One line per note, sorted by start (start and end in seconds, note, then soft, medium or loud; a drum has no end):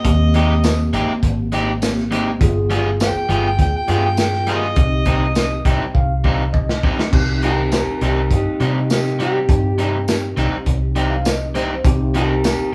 0.00 1.78 A#3 medium
0.00 0.91 D#5 loud
0.04 0.89 D#2 loud
0.04 1.78 C4 medium
0.04 1.79 G4 medium
0.04 kick loud
0.04 closed hi-hat medium
0.34 0.52 G#3 medium
0.34 0.53 C4 medium
0.34 0.53 D#4 medium
0.34 0.53 G4 medium
0.34 closed hi-hat medium
0.64 snare loud
0.64 closed hi-hat medium
0.64 tambourine loud
0.93 1.07 G#1 medium
0.93 1.11 G#3 medium
0.93 1.11 C4 loud
0.93 1.12 D#4 loud
0.93 1.12 G4 loud
0.93 closed hi-hat medium
1.08 muted fingered electric bass stroke soft
1.23 2.37 G#1 medium
1.23 kick medium
1.23 closed hi-hat medium
1.52 1.70 G#3 medium
1.52 1.71 C4 loud
1.52 1.71 D#4 medium
1.52 1.71 G4 loud
1.52 closed hi-hat medium
1.81 2.41 A#3 medium
1.81 2.41 C4 medium
1.81 2.42 G4 medium
1.81 snare loud
1.81 closed hi-hat medium
1.81 tambourine loud
1.98 snare soft
2.11 2.29 G#3 loud
2.11 2.29 C4 loud
2.11 2.30 D#4 loud
2.11 2.30 G4 loud
2.11 closed hi-hat medium
2.40 3.11 G1 loud
2.40 3.85 B3 medium
2.40 3.86 F4 medium
2.40 3.86 G#4 loud
2.40 kick loud
2.40 closed hi-hat loud
2.70 2.88 G3 loud
2.70 2.88 B3 loud
2.70 2.89 F4 loud
2.70 2.89 G#4 loud
2.70 closed hi-hat medium
3.00 3.15 G5 loud
3.00 snare loud
3.00 closed hi-hat medium
3.00 tambourine loud
3.15 3.30 G5 medium
3.15 muted fingered electric bass stroke soft
3.29 3.56 G1 medium
3.29 3.47 G3 medium
3.29 3.47 B3 loud
3.29 3.48 F4 medium
3.29 3.48 G#4 loud
3.29 3.45 G5 loud
3.29 closed hi-hat medium
3.47 3.59 G5 loud
3.59 3.72 D2 loud
3.59 3.74 G5 loud
3.59 kick medium
3.59 closed hi-hat medium
3.73 3.89 G5 loud
3.73 muted fingered electric bass stroke soft
3.88 4.73 G2 loud
3.88 4.06 G3 medium
3.88 4.77 B3 soft
3.88 4.07 B3 medium
3.88 4.77 F4 soft
3.88 4.07 F4 medium
3.88 4.78 G#4 medium
3.88 4.07 G#4 medium
3.88 4.04 G5 loud
3.88 closed hi-hat medium
4.05 4.18 G5 loud
4.17 4.48 G5 loud
4.17 snare loud
4.17 closed hi-hat medium
4.17 tambourine loud
4.33 snare soft
4.47 4.65 G3 medium
4.47 4.66 B3 loud
4.47 4.66 F4 loud
4.47 4.66 G#4 loud
4.47 4.57 A#4 medium
4.47 4.56 C5 medium
4.47 5.63 D#5 loud
4.47 closed hi-hat medium
4.76 5.61 C2 loud
4.76 7.09 C4 medium
4.76 7.09 D#4 medium
4.76 7.10 G4 medium
4.76 kick loud
4.76 closed hi-hat medium
5.05 5.24 C3 medium
5.05 5.24 G3 medium
5.05 5.25 C4 medium
5.05 5.25 D#4 loud
5.05 kick medium
5.05 closed hi-hat medium
5.35 snare loud
5.35 closed hi-hat medium
5.35 tambourine loud
5.65 5.79 C2 medium
5.65 5.83 C3 loud
5.65 5.84 G3 loud
5.65 5.84 C4 loud
5.65 5.84 D#4 loud
5.65 5.93 G5 medium
5.65 kick medium
5.65 closed hi-hat medium
5.81 muted fingered electric bass stroke soft
5.94 7.09 C2 medium
5.94 6.50 F5 medium
5.94 kick medium
6.24 6.42 C3 loud
6.24 6.43 G3 medium
6.24 6.43 C4 medium
6.24 6.43 D#4 loud
6.24 kick medium
6.53 7.08 D#5 medium
6.53 kick medium
6.69 snare medium
6.83 7.01 C3 loud
6.83 7.02 G3 loud
6.83 7.02 C4 loud
6.83 7.02 D#4 loud
6.83 kick medium
6.99 snare loud
7.11 7.83 C2 loud
7.11 9.44 C4 medium
7.11 9.45 D#4 medium
7.11 9.46 G4 medium
7.11 kick loud
7.11 crash loud
7.42 7.60 C3 medium
7.42 7.61 G3 medium
7.42 7.61 C4 medium
7.42 7.61 D#4 medium
7.42 7.73 G4 medium
7.42 7.72 A#4 medium
7.42 closed hi-hat medium
7.72 8.01 G4 medium
7.72 8.02 A#4 medium
7.72 snare loud
7.72 closed hi-hat medium
7.72 tambourine loud
8.01 8.29 C2 medium
8.01 8.19 C3 medium
8.01 8.20 G3 medium
8.01 8.20 C4 medium
8.01 8.20 D#4 medium
8.01 8.30 G4 medium
8.01 8.31 A#4 medium
8.01 closed hi-hat medium
8.31 8.44 G2 loud
8.31 8.60 D#4 medium
8.31 8.61 G4 medium
8.31 kick medium
8.31 closed hi-hat medium
8.45 muted fingered electric bass stroke soft
8.60 9.45 C3 loud
8.60 8.78 C3 medium
8.60 8.78 G3 medium
8.60 8.79 C4 medium
8.60 8.79 D#4 medium
8.60 8.89 D#4 medium
8.60 8.91 G4 medium
8.60 closed hi-hat medium
8.90 9.19 D#4 medium
8.90 9.20 G4 medium
8.90 snare loud
8.90 closed hi-hat medium
8.90 tambourine loud
9.06 snare soft
9.19 9.37 C3 medium
9.19 9.37 G3 medium
9.19 9.38 C4 medium
9.19 9.38 D#4 loud
9.19 10.94 G4 loud
9.19 closed hi-hat medium
9.47 10.33 G2 loud
9.47 11.80 C4 medium
9.47 11.81 D#4 medium
9.47 11.81 G4 medium
9.47 kick loud
9.47 closed hi-hat medium
9.78 9.96 C3 medium
9.78 9.96 G3 medium
9.78 9.97 C4 medium
9.78 9.97 D#4 loud
9.78 closed hi-hat medium
10.08 snare loud
10.08 closed hi-hat medium
10.08 tambourine loud
10.37 10.51 C2 medium
10.37 10.55 C3 medium
10.37 10.55 G3 loud
10.37 10.56 C4 loud
10.37 10.56 D#4 loud
10.37 closed hi-hat medium
10.66 11.80 C2 medium
10.66 kick medium
10.66 closed hi-hat medium
10.96 11.14 C3 medium
10.96 11.14 G3 medium
10.96 11.14 C4 medium
10.96 11.15 D#4 loud
10.96 11.10 G5 medium
10.96 closed hi-hat medium
11.10 11.24 F5 medium
11.25 11.53 D#5 medium
11.25 snare loud
11.25 closed hi-hat medium
11.25 tambourine loud
11.55 11.73 C3 medium
11.55 11.73 G3 loud
11.55 11.73 C4 loud
11.55 11.74 D#4 loud
11.55 11.83 C5 medium
11.55 closed hi-hat medium
11.84 12.55 C2 loud
11.84 12.74 C4 medium
11.84 12.74 D#4 medium
11.84 12.74 G4 loud
11.84 kick loud
11.84 closed hi-hat medium
12.14 12.32 C3 medium
12.14 12.33 G3 medium
12.14 12.33 C4 medium
12.14 12.33 D#4 loud
12.14 12.44 G4 medium
12.14 12.44 A#4 medium
12.14 closed hi-hat medium
12.44 12.72 G4 medium
12.44 12.73 A#4 medium
12.44 snare loud
12.44 closed hi-hat loud
12.44 tambourine loud
12.59 muted fingered electric bass stroke soft